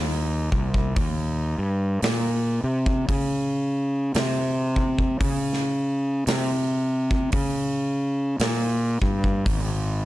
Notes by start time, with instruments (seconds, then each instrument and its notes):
Already playing: fingered electric bass D#2
0.52 fingered electric bass C2, kick
0.74 kick
0.96 fingered electric bass D#2, kick, open hi-hat
1.58 fingered electric bass G2
2.02 fingered electric bass A#2, snare, open hi-hat
2.64 fingered electric bass C3
2.86 kick
3.08 fingered electric bass C#3, kick, open hi-hat
4.15 fingered electric bass C3, snare, open hi-hat
4.76 kick
4.99 kick
5.20 fingered electric bass C#3, kick, open hi-hat
5.53 snare
6.27 fingered electric bass C3, snare, open hi-hat
7.11 kick
7.32 fingered electric bass C#3, kick, open hi-hat
8.40 fingered electric bass A#2, snare, open hi-hat
9.01 fingered electric bass G2, kick
9.24 kick
9.46 fingered electric bass G#1, kick, open hi-hat